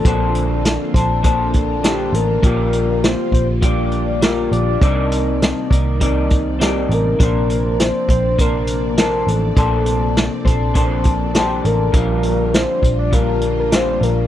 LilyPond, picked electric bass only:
\new Staff \with { instrumentName = "Picked electric bass" } { \clef bass \time 4/4 \key bes \major \tempo 4 = 101 bes,,4~ bes,,16 r16 bes,,2 a,,8 | bes,,4~ bes,,16 r16 bes,,2 bes,,8 | c,4~ c,16 r16 c,2 a,,8 | bes,,4~ bes,,16 r16 bes,,2 a,,8 |
bes,,4~ bes,,16 r16 bes,,2 a,,8 | bes,,4~ bes,,16 r16 bes,,2 bes,,8 | }